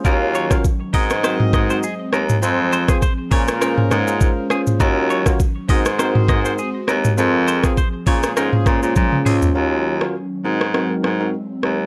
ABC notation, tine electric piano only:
X:1
M:4/4
L:1/16
Q:"Swing 16ths" 1/4=101
K:Ebdor
V:1 name="Tine electric piano"
[DFGB]3 [DFGB] z2 [CEGB] z [CEGB]3 [CEGB] z4 | [CFAc]3 [CFAc] z2 [DFAc] z [DFAc]3 [DFAc]3 [DFAc]2 | [DFGB]3 [DFGB] z2 [CEGB] z [CEGB]3 [CEGB] z4 | [CFAc]3 [CFAc] z2 [DFAc] z [DFAc]3 [DFAc]3 [DFAc]2 |
[DFGB]3 [DFGB] z2 [CEGB] z [CEGB]3 [CEGB] z4 |]